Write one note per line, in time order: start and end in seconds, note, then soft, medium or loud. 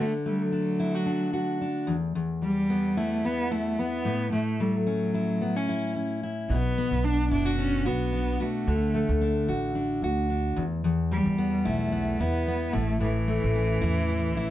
0.00 1.94 D3 medium
0.00 0.12 A3 medium
0.26 0.44 G3 medium
0.26 1.94 A3 medium
0.42 1.50 F#3 medium
0.52 1.05 D4 medium
0.79 0.94 E4 medium
0.94 1.32 F#4 soft
1.06 1.60 D4 medium
1.33 1.94 F#4 medium
1.61 1.94 D4 medium
1.87 2.14 E2 medium
2.15 4.05 E2 medium
2.42 4.11 G3 soft
2.42 2.99 G3 medium
2.70 3.23 B3 medium
2.97 3.26 A3 medium
2.97 3.51 E4 medium
3.24 3.78 B3 medium
3.24 3.53 B3 medium
3.51 3.81 A3 medium
3.51 5.14 E4 medium
3.79 4.12 B3 medium
3.79 4.32 B3 medium
4.05 4.31 A2 medium
4.32 6.49 A2 medium
4.32 4.62 A3 medium
4.60 4.78 G3 medium
4.60 6.56 A3 soft
4.76 5.84 F#3 medium
4.87 5.41 C#4 medium
5.14 5.68 E4 medium
5.41 5.56 B3 medium
5.56 5.95 C#4 soft
5.69 6.22 E4 medium
5.96 6.56 C#4 medium
6.23 6.56 E4 soft
6.49 6.88 B1 medium
6.49 8.67 B2 medium
6.49 7.06 B3 medium
6.78 8.73 B3 soft
6.91 7.28 B1 medium
7.04 7.31 D4 medium
7.04 7.58 D4 medium
7.31 7.81 F#1 medium
7.31 7.56 D4 medium
7.31 7.45 E4 medium
7.45 7.84 F#4 soft
7.58 7.88 C#4 medium
7.58 8.12 D4 medium
7.85 8.36 B1 medium
7.85 8.42 B3 medium
7.85 8.40 F#4 medium
8.13 8.73 D4 medium
8.40 9.49 A3 medium
8.40 8.73 F#4 medium
8.67 9.06 D2 medium
8.67 10.63 D3 medium
8.94 10.63 A3 soft
9.09 9.45 D2 medium
9.21 9.74 D4 medium
9.48 9.99 A1 medium
9.48 10.03 F#4 medium
9.75 10.29 D4 medium
10.02 10.53 D2 medium
10.02 10.63 F#4 medium
10.30 10.63 D4 medium
10.56 10.83 E2 medium
10.56 11.22 E2 medium
10.84 12.74 E2 medium
11.11 12.80 G3 soft
11.11 11.67 G3 medium
11.25 11.62 E2 medium
11.38 11.90 B3 medium
11.65 12.16 B1 medium
11.65 12.22 A3 medium
11.65 12.20 E4 medium
11.92 12.46 B3 medium
12.20 12.70 E2 medium
12.20 12.74 B3 medium
12.20 13.81 E4 medium
12.48 12.80 B3 medium
12.73 13.40 A1 medium
12.73 12.99 A2 medium
12.73 13.01 A3 medium
13.00 14.50 A2 medium
13.00 14.50 E3 medium
13.28 14.50 A3 soft
13.44 13.80 A1 medium
13.55 14.09 C#4 medium
13.81 14.37 E2 medium
13.81 14.35 E4 medium
14.09 14.50 C#4 medium
14.37 14.50 A1 medium
14.37 14.50 E4 medium